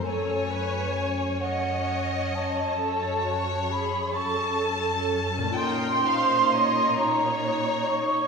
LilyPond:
<<
  \new Staff \with { instrumentName = "Flute section" } { \time 6/8 \key fis \dorian \tempo 4. = 43 gis''4. fis''4 a''8~ | a''4 b''8 cis'''8 r4 | bis''4. ais''4 cis'''8 | }
  \new Staff \with { instrumentName = "Violin section" } { \time 6/8 \key fis \dorian cis''4. dis''4. | cis''4. a''4. | g''8 eis''8 dis''8 cis''4. | }
  \new Staff \with { instrumentName = "Viola section" } { \time 6/8 \key fis \dorian << { a'8 b'8 cis''2 | a'8 fis'8 gis'8 a'4. | ais'8 bis'8 cis''8 cis''4. | } \\ { cis'2.~ | cis'4. cis'4. | dis'2. | } >> }
  \new Staff \with { instrumentName = "Harp" } { \time 6/8 \key fis \dorian <fis, a cis' fis'>2.~ | <fis, a cis' fis'>2. | <ais, ais cis' eis'>2. | }
  \new Staff \with { instrumentName = "Cello section" } { \clef bass \time 6/8 \key fis \dorian fis,2. | fis,2. | ais,2. | }
>>